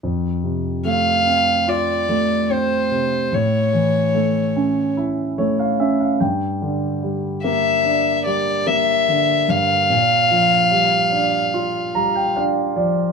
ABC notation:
X:1
M:4/4
L:1/16
Q:1/4=73
K:F
V:1 name="Violin"
z4 f4 d4 c4 | ^c8 z8 | z4 e4 d2 e4 f2- | f12 z4 |]
V:2 name="Grand piano"
z16 | z8 z2 ^c f e f g2 | z16 | z8 z2 b g f2 d2 |]
V:3 name="Grand piano" clef=bass
F,,2 C,2 A,2 C2 F2 A,2 C2 C,2 | A,,2 E,2 A,2 ^C2 E2 A,2 C2 G,,2 | D,2 G,2 B,2 D2 G,2 B,2 D,2 G,,2 | B,,2 F,2 G,2 D2 F2 G,2 D2 F,2 |]